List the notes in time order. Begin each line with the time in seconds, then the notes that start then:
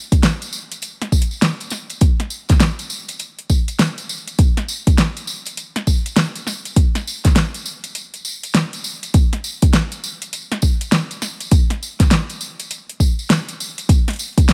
0.12 kick, closed hi-hat, tambourine
0.23 snare, closed hi-hat, tambourine
0.42 closed hi-hat, tambourine
0.53 tambourine
0.72 closed hi-hat, tambourine
0.82 closed hi-hat, tambourine
1.02 snare, closed hi-hat
1.12 kick, tambourine
1.22 closed hi-hat
1.31 tambourine
1.42 snare, closed hi-hat, tambourine
1.60 closed hi-hat, tambourine
1.70 snare, tambourine
1.89 closed hi-hat, tambourine
2.01 kick, closed hi-hat, tambourine
2.20 snare, closed hi-hat
2.30 tambourine
2.49 kick, snare, closed hi-hat, tambourine
2.60 snare, closed hi-hat, tambourine
2.79 closed hi-hat, tambourine
2.90 tambourine
3.08 closed hi-hat, tambourine
3.19 closed hi-hat, tambourine
3.39 closed hi-hat
3.50 kick, tambourine
3.68 closed hi-hat, tambourine
3.79 snare, closed hi-hat, tambourine
3.98 closed hi-hat, tambourine
4.09 tambourine
4.28 closed hi-hat, tambourine
4.39 kick, closed hi-hat, tambourine
4.57 snare, closed hi-hat
4.68 tambourine
4.87 kick, closed hi-hat, tambourine
4.98 snare, closed hi-hat, tambourine
5.17 closed hi-hat, tambourine
5.27 tambourine
5.45 closed hi-hat, tambourine
5.57 closed hi-hat, tambourine
5.76 snare, closed hi-hat
5.87 kick, tambourine
6.06 closed hi-hat, tambourine
6.16 snare, closed hi-hat, tambourine
6.35 closed hi-hat, tambourine
6.47 snare, tambourine
6.65 closed hi-hat, tambourine
6.76 kick, closed hi-hat, tambourine
6.95 snare, closed hi-hat, tambourine
7.07 tambourine
7.25 kick, snare, closed hi-hat, tambourine
7.35 snare, closed hi-hat, tambourine
7.54 closed hi-hat, tambourine
7.66 tambourine
7.84 closed hi-hat, tambourine
7.95 closed hi-hat, tambourine
8.14 closed hi-hat, tambourine
8.25 tambourine
8.43 closed hi-hat, tambourine
8.55 snare, closed hi-hat, tambourine
8.73 closed hi-hat, tambourine
8.84 tambourine
9.03 closed hi-hat, tambourine
9.14 kick, closed hi-hat, tambourine
9.33 snare, closed hi-hat
9.44 tambourine
9.62 kick, closed hi-hat, tambourine
9.73 snare, closed hi-hat, tambourine
9.92 closed hi-hat, tambourine
10.04 tambourine
10.22 closed hi-hat, tambourine
10.33 closed hi-hat, tambourine
10.52 snare, closed hi-hat
10.62 kick, tambourine
10.81 closed hi-hat, tambourine
10.92 snare, closed hi-hat, tambourine
11.11 closed hi-hat, tambourine
11.22 snare, tambourine
11.40 closed hi-hat, tambourine
11.51 kick, closed hi-hat, tambourine
11.70 snare, closed hi-hat
11.83 tambourine
12.00 kick, snare, closed hi-hat, tambourine
12.10 snare, closed hi-hat, tambourine
12.29 closed hi-hat, tambourine
12.41 tambourine
12.59 closed hi-hat, tambourine
12.71 closed hi-hat, tambourine
12.89 closed hi-hat
13.00 kick, tambourine
13.19 tambourine
13.30 snare, closed hi-hat, tambourine
13.49 closed hi-hat, tambourine
13.60 tambourine
13.78 closed hi-hat, tambourine
13.89 kick, closed hi-hat, tambourine
14.08 snare, closed hi-hat
14.10 closed hi-hat
14.13 closed hi-hat
14.16 closed hi-hat
14.19 closed hi-hat, tambourine
14.23 closed hi-hat
14.28 closed hi-hat
14.33 closed hi-hat
14.38 kick, closed hi-hat, tambourine
14.48 snare, closed hi-hat, tambourine